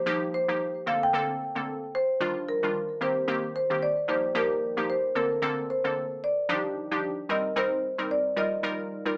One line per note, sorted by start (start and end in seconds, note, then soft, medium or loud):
0.00 0.33 C5 medium
0.06 0.45 F3 loud
0.06 0.45 A#3 medium
0.06 0.45 D#4 medium
0.06 0.45 G4 loud
0.34 0.89 C5 loud
0.48 0.66 F3 medium
0.48 0.66 A#3 medium
0.48 0.67 D#4 medium
0.48 0.67 G4 medium
0.86 1.07 D3 medium
0.86 1.07 A#3 medium
0.86 1.07 C4 medium
0.86 1.07 A4 medium
0.86 0.94 F5 loud
1.03 1.97 G5 loud
1.13 1.34 D3 medium
1.13 1.34 A#3 medium
1.13 1.34 C4 medium
1.13 1.34 A4 loud
1.55 1.73 D3 medium
1.55 1.74 A#3 medium
1.55 1.74 C4 medium
1.55 1.74 A4 medium
1.95 2.50 C5 loud
2.20 2.59 D#3 loud
2.20 2.59 G3 medium
2.20 2.59 D4 medium
2.20 2.59 F4 loud
2.49 2.98 A#4 medium
2.63 2.81 D#3 medium
2.63 2.81 G3 medium
2.63 2.81 D4 medium
2.63 2.81 F4 medium
3.01 3.21 D#3 medium
3.01 3.21 A#3 medium
3.01 3.21 C4 medium
3.01 3.22 G4 medium
3.01 3.54 C5 medium
3.28 3.48 D#3 medium
3.28 3.48 A#3 medium
3.28 3.48 C4 medium
3.28 3.48 G4 loud
3.56 3.83 C5 medium
3.70 3.88 D#3 medium
3.70 3.88 A#3 medium
3.70 3.88 C4 medium
3.70 3.88 G4 medium
3.83 4.07 D5 medium
4.08 4.28 F3 medium
4.08 4.28 A#3 medium
4.08 4.29 D#4 medium
4.08 4.29 G4 medium
4.08 4.34 C5 medium
4.35 4.73 F3 medium
4.35 4.73 A#3 medium
4.35 4.74 D#4 medium
4.35 4.74 G4 loud
4.35 4.91 A#4 medium
4.77 4.95 F3 medium
4.77 4.95 A#3 medium
4.77 4.95 D#4 medium
4.77 4.95 G4 medium
4.90 5.17 C5 medium
5.15 5.36 D3 medium
5.15 5.36 A#3 medium
5.15 5.36 C4 medium
5.15 5.36 A4 medium
5.15 5.92 A#4 medium
5.42 5.62 D3 medium
5.42 5.62 A#3 medium
5.42 5.62 C4 medium
5.42 5.63 A4 loud
5.70 6.25 C5 medium
5.84 6.02 D3 medium
5.84 6.02 A#3 medium
5.84 6.02 C4 medium
5.84 6.02 A4 medium
6.24 7.26 D5 medium
6.49 6.88 F3 medium
6.49 6.88 D4 medium
6.49 6.88 D#4 medium
6.49 6.88 G4 loud
6.91 7.09 F3 medium
6.91 7.09 D4 medium
6.91 7.09 D#4 medium
6.91 7.10 G4 medium
7.29 7.50 G3 medium
7.29 7.50 C4 medium
7.29 7.50 D#4 medium
7.29 7.50 A#4 medium
7.29 7.58 D#5 medium
7.56 7.76 G3 medium
7.56 7.77 C4 medium
7.56 7.77 D#4 medium
7.56 7.77 A#4 loud
7.56 8.12 C5 medium
7.98 8.16 G3 medium
7.98 8.16 C4 medium
7.98 8.17 D#4 medium
7.98 8.17 A#4 medium
8.11 8.38 D5 medium
8.36 8.57 G3 medium
8.36 8.57 D#4 medium
8.36 8.57 F4 medium
8.36 8.57 A#4 medium
8.36 9.14 D#5 medium
8.63 9.02 G3 medium
8.63 9.02 D#4 medium
8.63 9.02 F4 medium
8.63 9.02 A#4 loud
9.05 9.17 G3 medium
9.05 9.17 D#4 medium
9.05 9.17 F4 medium
9.05 9.17 A#4 medium